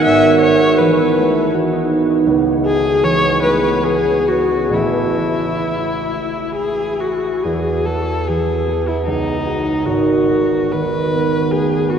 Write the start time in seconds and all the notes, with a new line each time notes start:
Already playing: B3 D#4 F#4
0.05 G#1 E5
0.24 F#4
0.41 G#4 C#5
0.61 F#4
0.79 E3 B4
0.99 B3
1.17 A3
1.36 B3
1.54 F#4
1.72 D#4
1.91 B3
2.09 D#4
2.26 C#2
2.46 G#4
2.65 G#4 A4
2.85 G#4
3.03 E3 C#5
3.23 B3
3.43 A3 B4
3.63 B3
3.84 G#4
4.05 C#4
4.28 B3 F#4
4.52 C#4
4.69 A1 E3 A3 C#4
4.74 E4 G#4
6.56 G#4
7.01 F#4
7.44 E2 G#4
7.86 B3 A4
8.27 E3 G#4
8.68 B3
8.88 E4
9.07 C#2 D#4
9.46 D#4 F#4
9.85 G#1 F#4
10.29 B3
10.72 D#3 B4
11.14 B3
11.51 A3 G#4
11.90 B3 F#4